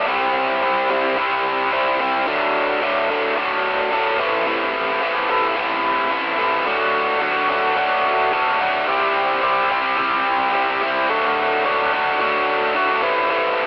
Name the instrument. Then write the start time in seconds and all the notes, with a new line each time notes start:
overdriven electric guitar
0.07 C3 G3 C4 E4
0.62 C3 G3 C4 E4
0.90 C3 G3 C4 E4
1.17 C3 G3 C4 E4
1.72 C3 G3 C4 E4
1.99 C3 G3 C4 E4
2.26 D3 F#3 A3 D4
2.82 D3 F#3 A3 D4
3.10 D3 F#3 A3 D4
3.37 D3 F#3 A3 D4
3.91 D3 F#3 A3 D4
4.19 C3 E3 A3 E4
4.46 C3 E3 A3 E4
5.01 C3 E3 A3 E4
5.29 C3 E3 A3 E4
5.56 C3 E3 A3 E4
6.11 C3 E3 A3 E4
6.38 C3 E3 A3 E4
6.66 D3 F#3 A3 D4 F#4
7.21 D3 F#3 A3 D4 F#4
7.49 D3 F#3 A3 D4 F#4
7.76 D3 F#3 A3 D4 F#4
8.32 D3 F#3 A3 D4 F#4
8.60 D3 F#3 A3 D4 F#4
8.87 C3 G3 C4 E4 G4
9.42 C3 G3 C4 E4 G4
9.70 C3 G3 C4 E4 G4
9.97 C3 G3 C4 E4 G4
10.53 C3 G3 C4 E4 G4
10.81 C3 G3 C4 E4 G4
11.09 D3 F#3 A3 D4 F#4
11.64 D3 F#3 A3 D4 F#4
11.92 D3 F#3 A3 D4 F#4
12.19 D3 F#3 A3 D4 F#4
12.75 D3 F#3 A3 D4 F#4
13.02 C3 E3 A3 E4
13.29 C3 E3 A3 E4